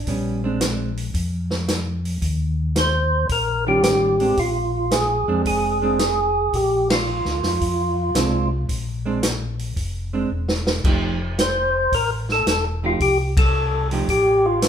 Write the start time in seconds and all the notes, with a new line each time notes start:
0.07 A#1 G3 B3 C#4, kick, open hi-hat
0.44 G#3 C4 D4
0.61 snare, closed hi-hat
0.97 open hi-hat
1.14 F2, kick, open hi-hat
1.51 snare
1.68 snare, closed hi-hat
2.05 open hi-hat
2.22 D#2, kick, open hi-hat
2.76 C5, snare, closed hi-hat
3.29 A#1 A#4, kick, open hi-hat
3.67 D#3 G3 C#4 F4 G4
3.83 A1 G4, snare, closed hi-hat
4.20 G#3 C4 D4, open hi-hat
4.37 A#1 F4, kick, open hi-hat
4.91 G#4, snare, closed hi-hat
5.28 F2 G#3 C4 D4
5.45 F1 G#4, kick, open hi-hat
5.82 G#3 C4 D4
5.99 snare, closed hi-hat
6.53 A#1 G4, kick, open hi-hat
6.90 F4, snare, ride
7.25 D2, snare
7.43 F2, snare, open hi-hat
7.61 F2, kick, open hi-hat
8.15 C2 G#3 C4 D4, snare, closed hi-hat
8.69 A#1, kick, open hi-hat
9.06 G#3 C4 D4
9.23 snare, closed hi-hat
9.59 open hi-hat
9.76 F1, kick, open hi-hat
10.13 G#3 C4 D4
10.30 E1
10.48 snare
10.67 snare
10.84 F1 F3 A3 D#4 G4, kick, crash
11.38 C5, snare, closed hi-hat
11.92 A1 A#4, kick, open hi-hat
12.29 A4, snare
12.46 E1 A4, snare, closed hi-hat
12.83 F3 A3 D#4 F4 G4
13.00 C2 G4, kick, open hi-hat
13.37 A4, kick, ride
13.91 F3 A3 D#4 G4, open hi-hat
14.08 A1 G4, kick, open hi-hat
14.46 F4
14.62 snare, closed hi-hat